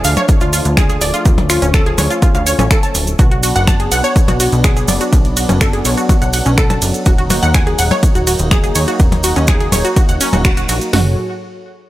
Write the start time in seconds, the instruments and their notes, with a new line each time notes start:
Already playing: analog synth pad F3 A3 D4
0.04 analog synth bass D2, synth pluck F5, open hi-hat, cabasa
0.16 synth pluck C#5, closed hi-hat, percussion blips, cabasa
0.29 kick, closed hi-hat, cabasa
0.41 analog synth bass D2, synth pluck F4, closed hi-hat, cabasa
0.53 synth pluck F4, open hi-hat, cabasa
0.65 analog synth bass D2, closed hi-hat, cabasa
0.77 synth pluck G#4, finger snap, kick, closed hi-hat, percussion blips, cabasa
0.89 synth pluck G#4, closed hi-hat, cabasa
1.01 analog synth bass D1, synth pluck D5, open hi-hat, cabasa
1.14 synth pluck F4, closed hi-hat, cabasa
1.25 analog synth bass D2, analog synth pad C#4, kick, closed hi-hat, cabasa
1.38 closed hi-hat, percussion blips
1.50 synth pluck F4, finger snap, open hi-hat, cabasa
1.62 analog synth bass D1, synth pluck C#4, closed hi-hat, cabasa
1.74 synth pluck A4, finger snap, kick, closed hi-hat, cabasa
1.86 synth pluck G#4, closed hi-hat
1.98 analog synth bass D2, synth pluck C#5, open hi-hat, percussion blips, cabasa
2.11 synth pluck F4, closed hi-hat, cabasa
2.22 synth pluck F4, kick, closed hi-hat, cabasa
2.35 analog synth bass D2, synth pluck F5, closed hi-hat, cabasa
2.46 synth pluck C#5, open hi-hat, cabasa
2.59 analog synth bass A1, synth pluck C#4, closed hi-hat, percussion blips, cabasa
2.71 synth pluck A4, finger snap, kick, closed hi-hat, cabasa
2.83 synth pluck A5, closed hi-hat, cabasa
2.95 analog synth bass D1, open hi-hat, cabasa
3.07 closed hi-hat, cabasa
3.19 analog synth bass B1, analog synth pad F#3 B3 D4, synth pluck F#4, kick, closed hi-hat, cabasa
3.31 synth pluck F#4, closed hi-hat
3.43 synth pluck F#4, open hi-hat, ride, cabasa
3.56 analog synth bass F#1, synth pluck F#5, closed hi-hat, cabasa
3.67 synth pluck A5, finger snap, kick, closed hi-hat, percussion blips, cabasa
3.80 synth pluck G#4, closed hi-hat
3.92 analog synth bass B1, synth pluck F#5, open hi-hat, ride, cabasa
4.04 synth pluck C#5, closed hi-hat, cabasa
4.16 kick, closed hi-hat, cabasa
4.28 analog synth bass B1, synth pluck F#4, closed hi-hat, percussion blips, cabasa
4.40 synth pluck F#4, open hi-hat, ride, cabasa
4.52 analog synth bass B1, closed hi-hat, cabasa
4.64 synth pluck G#4, finger snap, kick, closed hi-hat, cabasa
4.77 synth pluck G#4, closed hi-hat, cabasa
4.88 analog synth bass F#1, synth pluck D5, open hi-hat, ride, percussion blips, cabasa
5.01 synth pluck F#4, closed hi-hat, cabasa
5.13 analog synth bass B1, kick, closed hi-hat, cabasa
5.25 closed hi-hat
5.37 synth pluck F#4, open hi-hat, ride, cabasa
5.49 analog synth bass F#1, synth pluck C#4, closed hi-hat, percussion blips, cabasa
5.61 synth pluck A4, finger snap, kick, closed hi-hat, cabasa
5.73 synth pluck G#4, closed hi-hat
5.85 analog synth bass B1, synth pluck C#5, open hi-hat, ride, cabasa
5.98 synth pluck F#4, closed hi-hat, cabasa
6.09 synth pluck F#4, kick, closed hi-hat, percussion blips, cabasa
6.22 analog synth bass B1, synth pluck F#5, closed hi-hat, cabasa
6.33 synth pluck F#5, open hi-hat, ride, cabasa
6.46 analog synth bass B1, synth pluck C#4, closed hi-hat, cabasa
6.58 synth pluck A4, finger snap, kick, closed hi-hat, cabasa
6.70 synth pluck A5, closed hi-hat, percussion blips, cabasa
6.82 analog synth bass F#1, open hi-hat, ride, cabasa
6.94 closed hi-hat, cabasa
7.06 analog synth bass D#1, analog synth pad A#3 D#4, synth pluck F#4, kick, closed hi-hat, cabasa
7.18 synth pluck F#4, closed hi-hat
7.30 synth pluck F#4, open hi-hat, ride, percussion blips, cabasa
7.43 analog synth bass D#2, synth pluck F#5, closed hi-hat, cabasa
7.54 synth pluck G#5, finger snap, kick, closed hi-hat, cabasa
7.67 synth pluck G#4, closed hi-hat
7.79 analog synth bass D#1, synth pluck F#5, open hi-hat, ride, cabasa
7.91 synth pluck C#5, closed hi-hat, percussion blips, cabasa
8.03 kick, closed hi-hat, cabasa
8.15 analog synth bass D#1, synth pluck F#4, closed hi-hat, cabasa
8.27 synth pluck F#4, open hi-hat, ride, cabasa
8.39 analog synth bass D#1, closed hi-hat, cabasa
8.51 synth pluck G#4, finger snap, kick, closed hi-hat, percussion blips, cabasa
8.64 synth pluck G#4, closed hi-hat, cabasa
8.75 analog synth bass D#2, synth pluck C#5, open hi-hat, ride, cabasa
8.88 synth pluck F#4, closed hi-hat, cabasa
9.00 analog synth bass D#1, kick, closed hi-hat, cabasa
9.12 closed hi-hat, percussion blips
9.23 synth pluck F#4, open hi-hat, ride, cabasa
9.36 analog synth bass D#2, synth pluck C#4, closed hi-hat, cabasa
9.47 synth pluck G#4, finger snap, kick, closed hi-hat, cabasa
9.60 synth pluck G#4, closed hi-hat
9.72 analog synth bass D#1, synth pluck C#5, open hi-hat, ride, percussion blips, cabasa
9.85 synth pluck F#4, closed hi-hat, cabasa
9.96 synth pluck F#4, kick, closed hi-hat, cabasa
10.09 analog synth bass D#1, synth pluck F#5, closed hi-hat, cabasa
10.21 synth pluck C#4, open hi-hat, ride, cabasa
10.33 analog synth bass D#1, synth pluck F#4, closed hi-hat, percussion blips, cabasa
10.45 synth pluck F#4, finger snap, kick, closed hi-hat, cabasa
10.57 synth pluck F#4, closed hi-hat, cabasa
10.69 analog synth bass A#1, synth pluck F#4, open hi-hat, ride, cabasa
10.81 closed hi-hat, cabasa
10.93 analog synth bass F#1, analog synth pad F#3 F#4 G#4 A4 C#5, synth pluck F#4, snare, floor tom, open hi-hat